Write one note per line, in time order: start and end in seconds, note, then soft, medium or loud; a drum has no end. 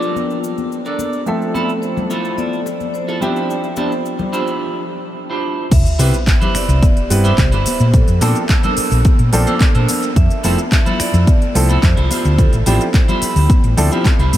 0.00 1.24 F3 medium
0.00 1.24 A#3 medium
0.00 1.24 C4 medium
0.00 0.37 D4 medium
0.00 1.24 D4 medium
0.00 0.68 F4 medium
0.00 0.37 A4 medium
0.00 0.37 A#4 medium
0.00 0.37 D5 loud
0.00 1.24 A5 medium
0.00 cabasa soft
0.16 high conga medium
0.16 cabasa soft
0.30 cabasa soft
0.44 cabasa medium
0.58 high conga medium
0.58 cabasa soft
0.72 cabasa soft
0.85 1.20 D4 medium
0.85 1.21 A4 medium
0.85 1.21 A#4 medium
0.85 1.21 D5 medium
0.85 cabasa soft
0.99 high conga medium
0.99 cabasa medium
1.13 cabasa soft
1.26 3.18 F3 medium
1.26 3.18 A3 medium
1.26 3.19 C4 medium
1.26 1.84 A4 medium
1.26 3.19 A4 medium
1.26 3.19 E5 medium
1.26 cabasa soft
1.42 cabasa soft
1.54 1.69 E4 loud
1.54 1.69 F4 medium
1.54 1.69 A4 medium
1.54 high bongo medium
1.54 high conga medium
1.54 cabasa medium
1.69 cabasa soft
1.82 2.40 C5 medium
1.82 muted clean electric guitar stroke soft
1.82 cabasa medium
1.96 muted clean electric guitar stroke medium
1.96 high conga medium
1.96 low conga medium
1.96 cabasa soft
2.10 2.59 E4 medium
2.10 2.60 F4 loud
2.10 2.60 A4 loud
2.10 high bongo soft
2.10 cabasa medium
2.25 cabasa soft
2.38 2.95 D5 loud
2.38 high conga medium
2.38 cabasa medium
2.53 cabasa soft
2.66 high bongo medium
2.66 cabasa medium
2.80 high conga medium
2.80 cabasa soft
2.94 3.44 C5 medium
2.94 cabasa soft
3.08 3.21 E4 medium
3.08 3.21 F4 medium
3.08 3.22 A4 medium
3.08 high bongo soft
3.08 cabasa soft
3.21 4.60 F3 medium
3.21 4.60 C4 medium
3.21 4.61 D4 medium
3.21 3.66 D4 medium
3.21 3.67 E4 medium
3.21 3.67 F4 medium
3.21 3.67 G4 medium
3.21 4.61 G4 medium
3.21 3.67 C5 medium
3.21 4.61 E5 medium
3.21 high conga medium
3.21 cabasa medium
3.36 cabasa soft
3.43 3.50 D5 medium
3.50 4.57 C5 medium
3.50 cabasa medium
3.64 cabasa soft
3.76 3.92 D4 medium
3.76 3.92 E4 medium
3.76 3.92 F4 medium
3.76 3.92 G4 medium
3.76 3.92 D5 medium
3.76 high bongo medium
3.76 high conga medium
3.76 cabasa medium
3.92 cabasa soft
4.05 muted clean electric guitar stroke soft
4.05 cabasa medium
4.19 muted clean electric guitar stroke medium
4.19 high conga medium
4.19 low conga medium
4.19 cabasa soft
4.33 4.82 D4 medium
4.33 4.82 E4 medium
4.33 4.82 F4 medium
4.33 4.82 G4 medium
4.33 4.82 C5 loud
4.33 high bongo soft
4.33 cabasa medium
4.47 cabasa soft
5.30 5.65 D4 medium
5.30 5.65 E4 medium
5.30 5.65 F4 medium
5.30 5.65 G4 medium
5.30 5.65 C5 medium
5.71 5.82 C2 loud
5.71 6.57 E5 loud
5.71 kick loud
5.71 closed hi-hat medium
5.71 crash loud
5.71 sub drop medium
5.71 cabasa soft
5.86 closed hi-hat soft
5.86 cabasa soft
5.99 6.10 C3 medium
5.99 6.12 G3 medium
5.99 6.12 B3 medium
5.99 6.12 C4 medium
5.99 6.14 E4 loud
5.99 6.12 E4 medium
5.99 6.14 G4 medium
5.99 6.14 B4 loud
5.99 6.12 B4 medium
5.99 6.14 C5 loud
5.99 open hi-hat loud
5.99 high bongo medium
5.99 high conga medium
5.99 cabasa medium
6.14 closed hi-hat soft
6.14 cabasa soft
6.27 muted clean electric guitar stroke soft
6.27 kick loud
6.27 clap loud
6.27 closed hi-hat medium
6.27 cabasa medium
6.27 cabasa soft
6.41 6.83 E4 medium
6.41 6.83 G4 medium
6.41 6.83 B4 medium
6.41 6.83 C5 medium
6.41 closed hi-hat soft
6.41 high conga medium
6.41 low conga medium
6.41 cabasa soft
6.55 7.07 D5 loud
6.55 finger snap medium
6.55 muted fingered electric bass stroke soft
6.55 open hi-hat loud
6.55 high bongo soft
6.55 cabasa medium
6.69 6.79 C2 loud
6.69 closed hi-hat soft
6.69 cabasa soft
6.83 kick loud
6.83 closed hi-hat medium
6.83 high conga medium
6.83 cabasa soft
6.83 cabasa medium
6.97 closed hi-hat soft
6.97 cabasa soft
7.10 7.31 G2 medium
7.10 7.30 G3 medium
7.10 7.30 B3 medium
7.10 7.30 C4 medium
7.10 7.30 E4 medium
7.10 7.30 B4 loud
7.10 7.37 C5 medium
7.10 open hi-hat loud
7.10 high bongo medium
7.10 cabasa medium
7.24 7.38 E4 loud
7.24 7.38 G4 loud
7.24 7.38 B4 loud
7.24 7.38 C5 loud
7.24 closed hi-hat soft
7.24 high conga medium
7.24 cabasa soft
7.38 7.49 C2 medium
7.38 7.96 C5 medium
7.38 kick loud
7.38 clap loud
7.38 closed hi-hat medium
7.38 cabasa soft
7.52 7.63 G1 medium
7.52 7.87 E4 loud
7.52 7.87 G4 medium
7.52 7.87 B4 medium
7.52 7.87 C5 loud
7.52 closed hi-hat soft
7.52 high bongo medium
7.52 cabasa soft
7.66 muted fingered electric bass stroke soft
7.66 open hi-hat loud
7.66 high conga loud
7.66 cabasa medium
7.80 8.01 A#2 medium
7.80 closed hi-hat soft
7.80 cabasa soft
7.94 8.46 A4 medium
7.94 kick loud
7.94 closed hi-hat medium
7.94 cabasa soft
7.94 cabasa medium
8.08 8.18 F2 medium
8.08 closed hi-hat soft
8.08 cabasa soft
8.21 8.32 A#2 loud
8.21 8.41 F3 medium
8.21 8.41 A#3 medium
8.21 8.41 C4 medium
8.21 8.41 D4 medium
8.21 8.36 D4 loud
8.21 8.36 A4 loud
8.21 8.41 A4 loud
8.21 8.36 A#4 loud
8.21 8.36 C5 loud
8.21 open hi-hat loud
8.21 high bongo medium
8.21 high conga medium
8.21 cabasa medium
8.35 closed hi-hat soft
8.35 cabasa soft
8.49 muted clean electric guitar stroke soft
8.49 kick loud
8.49 clap loud
8.49 closed hi-hat medium
8.49 cabasa soft
8.63 9.05 D4 medium
8.63 9.05 A4 medium
8.63 9.05 A#4 medium
8.63 9.05 C5 loud
8.63 closed hi-hat soft
8.63 high conga medium
8.63 low conga medium
8.63 cabasa soft
8.77 muted fingered electric bass stroke soft
8.77 open hi-hat loud
8.77 high bongo soft
8.77 cabasa medium
8.91 9.02 A#1 loud
8.91 open hi-hat medium
8.91 cabasa soft
9.05 kick loud
9.05 closed hi-hat medium
9.05 high conga medium
9.05 cabasa soft
9.19 9.29 A#2 loud
9.19 closed hi-hat soft
9.19 cabasa soft
9.32 9.44 A#1 medium
9.32 9.52 F3 loud
9.32 9.52 A#3 medium
9.32 9.52 C4 medium
9.32 9.52 D4 medium
9.32 9.53 A4 loud
9.32 open hi-hat loud
9.32 cabasa medium
9.47 9.61 D4 loud
9.47 9.61 A4 loud
9.47 9.61 A#4 loud
9.47 9.61 C5 loud
9.47 closed hi-hat soft
9.47 high conga medium
9.47 cabasa soft
9.60 kick loud
9.60 clap loud
9.60 closed hi-hat medium
9.60 cabasa soft
9.75 9.85 A#2 medium
9.75 10.09 D4 medium
9.75 10.09 A4 medium
9.75 10.09 A#4 medium
9.75 10.10 C5 loud
9.75 closed hi-hat soft
9.75 cabasa soft
9.89 open hi-hat loud
9.89 high conga loud
9.89 cabasa medium
10.03 closed hi-hat soft
10.03 cabasa soft
10.16 10.27 F2 loud
10.16 11.02 E5 loud
10.16 kick loud
10.16 closed hi-hat medium
10.16 cabasa medium
10.16 cabasa soft
10.30 closed hi-hat soft
10.30 cabasa soft
10.43 10.55 F1 medium
10.43 10.56 F3 medium
10.43 10.56 A3 medium
10.43 10.56 C4 medium
10.43 10.58 E4 loud
10.43 10.57 E4 medium
10.43 10.58 F4 medium
10.43 10.58 A4 loud
10.43 10.57 A4 loud
10.43 10.58 C5 loud
10.43 open hi-hat loud
10.43 high bongo medium
10.43 high conga loud
10.43 cabasa medium
10.58 closed hi-hat soft
10.58 cabasa soft
10.72 muted clean electric guitar stroke soft
10.72 kick loud
10.72 clap loud
10.72 closed hi-hat medium
10.72 cabasa soft
10.72 cabasa medium
10.86 11.27 E4 loud
10.86 11.27 F4 medium
10.86 11.28 A4 medium
10.86 11.28 C5 loud
10.86 closed hi-hat soft
10.86 high conga medium
10.86 low conga medium
10.86 cabasa soft
11.00 11.57 D5 loud
11.00 finger snap medium
11.00 muted fingered electric bass stroke soft
11.00 open hi-hat loud
11.00 high bongo soft
11.00 cabasa medium
11.14 11.24 F2 loud
11.14 closed hi-hat soft
11.14 cabasa soft
11.27 kick loud
11.27 closed hi-hat medium
11.27 high conga loud
11.27 cabasa soft
11.27 cabasa medium
11.42 closed hi-hat soft
11.42 cabasa soft
11.55 11.76 C2 medium
11.55 11.74 F3 medium
11.55 11.75 A3 medium
11.55 11.75 C4 medium
11.55 11.75 E4 medium
11.55 11.75 A4 loud
11.55 11.81 C5 loud
11.55 open hi-hat loud
11.55 high bongo medium
11.55 cabasa medium
11.69 11.83 E4 loud
11.69 11.83 F4 loud
11.69 11.83 A4 loud
11.69 11.83 C5 loud
11.69 closed hi-hat soft
11.69 high conga medium
11.69 cabasa soft
11.82 11.93 F2 medium
11.82 12.40 C5 loud
11.82 kick loud
11.82 clap loud
11.82 closed hi-hat medium
11.82 cabasa soft
11.97 12.07 C2 medium
11.97 12.10 E4 loud
11.97 12.10 F4 medium
11.97 12.11 A4 medium
11.97 12.10 C5 loud
11.97 closed hi-hat soft
11.97 high bongo medium
11.97 cabasa soft
12.11 12.55 E4 loud
12.11 12.56 F4 medium
12.11 12.56 G4 medium
12.11 12.56 C5 loud
12.11 muted fingered electric bass stroke soft
12.11 open hi-hat loud
12.11 high conga medium
12.11 cabasa medium
12.25 12.46 D2 loud
12.25 closed hi-hat soft
12.25 cabasa soft
12.38 12.90 A4 medium
12.38 kick loud
12.38 closed hi-hat medium
12.38 cabasa soft
12.53 12.63 A1 medium
12.53 closed hi-hat soft
12.53 cabasa soft
12.66 12.77 A1 loud
12.66 12.86 F3 medium
12.66 12.86 C4 medium
12.66 12.86 D4 medium
12.66 12.81 E4 loud
12.66 12.86 E4 medium
12.66 12.81 F4 loud
12.66 12.81 G4 loud
12.66 12.86 G4 loud
12.66 12.81 C5 loud
12.66 open hi-hat loud
12.66 high bongo medium
12.66 high conga loud
12.66 cabasa medium
12.81 closed hi-hat soft
12.81 cabasa soft
12.94 muted clean electric guitar stroke soft
12.94 kick loud
12.94 clap loud
12.94 closed hi-hat medium
12.94 cabasa soft
12.94 cabasa medium
13.08 13.50 E4 medium
13.08 13.50 F4 medium
13.08 13.50 G4 medium
13.08 13.50 C5 loud
13.08 closed hi-hat soft
13.08 high conga medium
13.08 low conga medium
13.08 cabasa soft
13.22 muted fingered electric bass stroke soft
13.22 open hi-hat loud
13.22 high bongo soft
13.22 cabasa medium
13.36 13.46 D2 loud
13.36 open hi-hat medium
13.36 cabasa soft
13.49 kick loud
13.49 closed hi-hat medium
13.49 high conga medium
13.49 cabasa soft
13.49 cabasa medium
13.64 13.74 A1 medium
13.64 closed hi-hat soft
13.64 cabasa soft
13.77 13.88 D2 medium
13.77 13.88 F3 loud
13.77 13.88 C4 medium
13.77 13.88 D4 medium
13.77 13.88 E4 medium
13.77 13.89 A4 loud
13.77 open hi-hat loud
13.77 cabasa medium
13.77 cabasa loud
13.91 14.03 F3 medium
13.91 14.03 C4 medium
13.91 14.03 D4 medium
13.91 14.05 E4 loud
13.91 14.04 E4 medium
13.91 14.05 F4 loud
13.91 14.04 G4 medium
13.91 14.05 G4 loud
13.91 14.06 C5 loud
13.91 closed hi-hat soft
13.91 high conga medium
13.91 cabasa soft
14.05 kick loud
14.05 clap loud
14.05 closed hi-hat medium
14.05 cabasa soft
14.19 14.29 C2 medium
14.19 14.38 E4 medium
14.19 14.38 F4 medium
14.19 14.38 G4 medium
14.19 14.38 C5 loud
14.19 closed hi-hat soft
14.19 cabasa soft
14.33 14.38 G2 medium
14.33 open hi-hat loud
14.33 high conga loud
14.33 cabasa medium